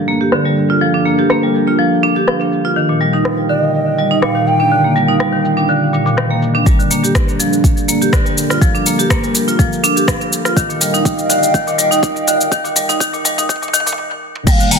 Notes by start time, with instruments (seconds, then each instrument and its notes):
Already playing: analog synth pad G3 D4 A4 A#4
0.08 marimba A#3, shaker
0.21 marimba G4, shaker
0.32 marimba D3, cross-stick, shaker
0.45 marimba G3
0.57 shaker
0.70 marimba F4, shaker
0.81 marimba F3, shaker
0.94 marimba D4
1.06 marimba A#3, shaker
1.19 marimba G4, shaker
1.30 marimba A#3, cross-stick
1.43 marimba G3
1.55 shaker
1.67 marimba F4, shaker
1.79 marimba F3, shaker
2.03 marimba D4, shaker
2.16 marimba G4, shaker
2.27 marimba F3, cross-stick, shaker
2.52 shaker
2.65 marimba F4, shaker
2.76 marimba D#3, analog synth pad A#4 F5 G5, shaker
2.89 marimba A#2
3.01 marimba G3, shaker
3.13 marimba D#4, shaker
3.25 cross-stick, shaker
3.49 marimba D3, bansuri D#5, shaker
3.63 shaker
3.74 shaker
3.98 marimba G3, shaker
4.11 marimba D#4, shaker
4.22 marimba A#2, bansuri F5, cross-stick, shaker
4.35 marimba D#3
4.47 bansuri G5, shaker
4.60 marimba D4, shaker
4.71 marimba D3, shaker
4.84 marimba A#3
4.96 marimba G3, shaker
5.08 marimba D#4, shaker
5.20 marimba G3, cross-stick, shaker
5.33 marimba D#3
5.45 shaker
5.57 marimba D4, shaker
5.69 marimba D3, shaker
5.93 marimba A#2, shaker
6.06 marimba A#2, shaker
6.17 marimba D#3, cross-stick, shaker
6.30 marimba A#3
6.42 shaker
6.55 marimba D4, shaker
6.66 marimba G3, analog synth pad G3 D4 A4 A#4, kick, mid tom, shaker
6.79 marimba D3, shaker
6.91 marimba A#3, shaker
7.04 marimba G4, shaker
7.15 kick, cross-stick, shaker
7.29 shaker
7.40 marimba F3, mid tom, shaker
7.53 shaker
7.64 kick, mid tom, shaker
7.77 shaker
7.88 marimba A#3, shaker
8.01 marimba G4, shaker
8.13 marimba D3, kick, cross-stick, shaker
8.26 marimba G3, mid tom, shaker
8.38 shaker
8.50 marimba F4, cross-stick, shaker
8.62 marimba F3, kick, mid tom, shaker
8.75 marimba D4, shaker
8.86 marimba A#3, shaker
8.99 marimba G4, shaker
9.10 marimba A#3, kick, cross-stick, shaker
9.23 marimba G3, shaker
9.35 mid tom, shaker
9.48 marimba F4, shaker
9.59 marimba F3, kick, mid tom, shaker
9.73 shaker
9.84 marimba D4, shaker
9.96 marimba G4, shaker
10.08 marimba F3, kick, cross-stick, shaker
10.21 mid tom, shaker
10.33 shaker
10.45 marimba F4, cross-stick, shaker
10.56 marimba D#3, analog synth pad D#5 F5 G5, kick, mid tom, shaker
10.69 marimba A#2, shaker
10.81 marimba G3, mid tom, shaker
10.94 marimba D#4, shaker
11.05 kick, mid tom, shaker
11.19 shaker
11.30 marimba D3, mid tom, shaker
11.43 shaker
11.54 marimba D#3, kick, mid tom, shaker
11.67 marimba A#2, shaker
11.78 marimba G3, mid tom, shaker
11.91 marimba D#4, shaker
12.03 kick, mid tom, shaker
12.16 mid tom, shaker
12.27 marimba D3, mid tom, shaker
12.41 shaker
12.52 marimba D#3, kick, mid tom, shaker
12.65 marimba A#2, mid tom, shaker
12.76 marimba G3, mid tom, shaker
12.89 marimba D#4, mid tom, shaker
13.00 marimba D#3, kick, mid tom, shaker
13.13 marimba A#2, mid tom, shaker
13.25 marimba G3, mid tom, shaker
13.38 marimba D#4, mid tom, shaker
13.49 marimba D#3, kick, mid tom, shaker
13.56 mid tom
13.62 marimba A#2, mid tom, shaker
13.68 mid tom
13.74 marimba D#3, mid tom, shaker
13.80 mid tom
13.87 marimba A#2, mid tom, shaker
13.92 mid tom
13.98 high tom
14.11 high tom
14.36 mid tom
14.47 analog synth pad G3 D4 G4 A#4, marimba G3, bansuri G5, kick, crash, high conga, shaker
14.52 bansuri F5
14.60 marimba D3, shaker
14.71 marimba A#3, bansuri A#5, open hi-hat, shaker
14.76 bansuri G5